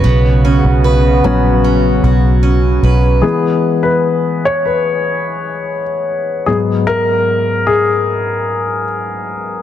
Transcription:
<<
  \new Staff \with { instrumentName = "Steel-string acoustic guitar" } { \time 4/4 \key e \lydian \tempo 4 = 75 b8 cis'8 b'8 fis'8 cis'8 fis'8 cis'8 b'8 | r1 | r1 | }
  \new Staff \with { instrumentName = "Grand piano" } { \time 4/4 \key e \lydian r1 | gis'8. b'8. cis''16 b'4. r8. | gis'8 ais'4 gis'4. r4 | }
  \new Staff \with { instrumentName = "Grand piano" } { \clef bass \time 4/4 \key e \lydian r4. <fis b cis'>8 r2 | <e gis b>1 | <gis, fis b>1 | }
  \new Staff \with { instrumentName = "Analog synth pad" } { \time 4/4 \key e \lydian <cis b fis'>1 | r1 | r1 | }
  \new Staff \with { instrumentName = "Fingered electric bass" } { \clef bass \time 4/4 \key e \lydian b,,8. b,,8. ais,,4 b,,4 b,,8 | r1 | r1 | }
>>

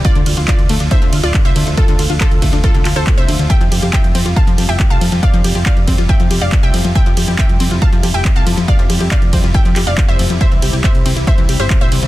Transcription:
<<
  \new Staff \with { instrumentName = "Synth pluck" } { \time 4/4 \key f \major \tempo 4 = 139 <f' d''>8. r16 <f' d''>8. r16 <c'' e''>8 r16 <f' d''>16 r16 <c'' e''>8 r16 | <f' a'>8. r16 <f' a'>8. r16 <f' a'>8 r16 <a' c''>16 r16 <c'' e''>8 r16 | <e'' g''>8. r16 <e'' g''>8. r16 <f'' a''>8 r16 <e'' g''>16 r16 <f'' a''>8 r16 | <d'' f''>8. r16 <d'' f''>8. r16 <e'' g''>8 r16 <d'' f''>16 r16 <e'' g''>8 r16 |
<e'' g''>8. r16 <e'' g''>8. r16 <f'' a''>8 r16 <e'' g''>16 r16 <f'' a''>8 r16 | <d'' f''>8. r16 <d'' f''>8. r16 <e'' g''>8 r16 <d'' f''>16 r16 <c'' e''>8 r16 | <c'' e''>8. r16 <c'' e''>8. r16 <c'' e''>8 r16 <c'' e''>16 r16 <c'' e''>8 r16 | }
  \new Staff \with { instrumentName = "Synth arpeggio sound" } { \time 4/4 \key f \major d16 d16 f'16 f'16 r8 a16 d'16 d'16 d16 f'16 f'16 r8 d16 d16 | d16 d16 f'16 f'16 r8 a16 d'16 d'16 d16 f'16 f'16 r8 d16 d16 | f16 f16 g'16 g'16 r8 c'16 f'16 f'16 f16 g'16 g'16 r8 f16 f16 | f16 f16 g'16 g'16 r8 c'16 f'16 f'16 f16 g'16 g'16 r8 f16 f16 |
f16 f16 g'16 g'16 r8 c'16 f'16 f'16 f16 g'16 g'16 r8 f16 f16 | f16 f16 g'16 g'16 r8 c'16 f'16 f'16 f16 g'16 g'16 r8 f16 f16 | e16 e16 g'16 g'16 r8 c'16 e'16 e'16 e16 g'16 g'16 r8 e16 e16 | }
  \new Staff \with { instrumentName = "Analog synth pad" } { \clef bass \time 4/4 \key f \major <d f a f'>8 <d f a f'>8 <d f a f'>8 <d f a f'>8 <d f a f'>16 <d f a f'>8 <d f a f'>8 <d f a f'>8 <d f a f'>16 | <d f a f'>8 <d f a f'>8 <d f a f'>8 <d f a f'>8 <d f a f'>16 <d f a f'>8 <d f a f'>8 <d f a f'>8 <d f a f'>16 | <c f g f'>8 <c f g f'>8 <c f g f'>8 <c f g f'>8 <c f g f'>16 <c f g f'>8 <c f g f'>8 <c f g f'>8 <c f g f'>16 | <c f g f'>8 <c f g f'>8 <c f g f'>8 <c f g f'>8 <c f g f'>16 <c f g f'>8 <c f g f'>8 <c f g f'>8 <c f g f'>16 |
<c f g e'>8 <c f g e'>8 <c f g e'>8 <c f g e'>8 <c f g e'>16 <c f g e'>8 <c f g e'>8 <c f g e'>8 <c f g e'>16 | <c f g e'>8 <c f g e'>8 <c f g e'>8 <c f g e'>8 <c f g e'>16 <c f g e'>8 <c f g e'>8 <c f g e'>8 <c f g e'>16 | <c e g e'>8 <c e g e'>8 <c e g e'>8 <c e g e'>8 <c e g e'>16 <c e g e'>8 <c e g e'>8 <c e g e'>8 <c e g e'>16 | }
  \new Staff \with { instrumentName = "FM bass" } { \clef bass \time 4/4 \key f \major r16 d,16 d,16 d,16 r16 d,16 d,16 d,16 r16 d,16 d,16 d,,16 r16 c,16 d,16 d,16 | r16 d,16 d,16 d,16 r16 d,16 d,16 d,16 r16 c,16 d,16 d,16 r16 c,16 d,16 d,16 | r16 f,16 f,16 f,16 r16 f,16 f,16 f,16 r16 f,16 f,16 f,,16 r16 c,16 f,16 f,16 | r16 f,16 f,16 f,16 r16 f,16 f,16 f,16 r16 f,16 f,16 f,,16 r16 c,16 f,16 f,16 |
r16 f,16 f,16 f,16 r16 f,16 f,16 f,16 r16 f,16 f,16 f,,16 r16 c,16 f,16 f,16 | r16 f,16 f,16 f,16 r16 f,16 f,16 f,16 r16 f,16 f,16 f,,16 r16 f,,16 f,,16 f,16 | r16 c,16 c,16 c,16 r16 c,16 c,16 c,16 r16 c,16 c,16 g,,16 r16 bes,,16 c,16 c,16 | }
  \new DrumStaff \with { instrumentName = "Drums" } \drummode { \time 4/4 <hh bd>16 hh16 <hho cymr>16 hh16 <hc hh bd>16 hh16 <hho cymr>16 hh16 <hh bd>16 hh16 <hho cymr>16 hh16 <hc hh bd>16 hh16 <hho cymr>16 hh16 | <hh bd>16 hh16 <hho cymr>16 hh16 <hc hh bd>16 hh16 <hho bd cymr>16 hh16 <hh bd>16 hh16 <hc hho cymr>16 hh16 <hc hh bd>16 hh16 <hho cymr>16 hh16 | <hh bd>16 hh16 <hho cymr>16 hh16 <hc hh bd>16 hh16 <hho cymr>16 hh16 <hh bd>16 hh16 <hho cymr>16 hh16 <hc hh bd>16 hh16 <hho cymr>16 hh16 | <hh bd>16 hh16 <hho cymr>16 hh16 <hc hh bd>16 hh16 <hho bd cymr>16 hh16 <hh bd>16 hh16 <hho cymr>16 hh16 <hc hh bd>16 hh16 <hho cymr>16 hh16 |
<hh bd>16 hh16 <hho cymr>16 hh16 <hc hh bd>16 hh16 <hho cymr>16 hh16 <hh bd>16 hh16 <hho cymr>16 hh16 <hc hh bd>16 hh16 <hho cymr>16 hh16 | <hh bd>16 hh16 <hho cymr>16 hh16 <hc hh bd>16 hh16 <hho bd cymr>16 hh16 <hh bd>16 hh16 <hc hho cymr>16 hh16 <hc hh bd>16 hh16 <hho cymr>16 hh16 | <hh bd>16 hh16 <hho cymr>16 hh16 <hc hh bd>16 hh16 <hho cymr>16 hh16 <hh bd>16 hh16 <hho cymr>16 hh16 <hc hh bd>16 hh16 <hho cymr>16 hh16 | }
>>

